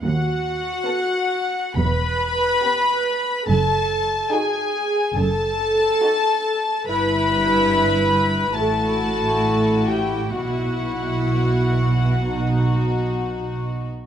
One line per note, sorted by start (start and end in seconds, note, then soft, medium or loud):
0.04 0.69 D#2 medium
0.04 1.74 F#4 medium
0.04 1.73 F#5 loud
0.86 1.55 B3 medium
0.86 1.56 A4 medium
1.76 2.45 E1 medium
1.76 2.45 E2 medium
1.76 3.49 B4 medium
1.76 3.47 B5 loud
2.63 3.27 B3 medium
2.63 3.27 G4 medium
3.48 4.16 F#1 medium
3.48 4.16 F#2 medium
3.48 4.31 A4 medium
3.48 4.31 A5 loud
4.32 4.95 D#4 medium
4.32 4.96 F#4 medium
4.32 5.16 G#4 medium
4.32 5.16 G#5 medium
5.16 5.85 F#1 medium
5.16 5.85 F#2 medium
5.16 6.88 A4 medium
5.16 6.88 A5 loud
6.02 6.67 D#4 medium
6.02 6.67 F#4 medium
6.88 8.51 G1 medium
6.88 8.51 G2 medium
6.88 8.52 E4 medium
6.88 8.53 B4 medium
6.88 8.52 B5 loud
8.55 10.30 A1 medium
8.55 10.30 A2 medium
8.55 10.30 E4 medium
8.55 10.32 F#4 medium
8.55 9.87 A4 medium
8.55 9.87 A5 medium
9.87 10.33 G4 medium
9.87 10.34 G5 medium
10.31 13.90 B1 medium
10.31 13.90 B2 medium
10.31 12.23 E4 medium
10.31 13.67 F#4 medium
10.31 12.23 F#4 medium
10.31 13.66 F#5 medium
12.28 13.88 D#4 medium
12.28 13.88 F#4 medium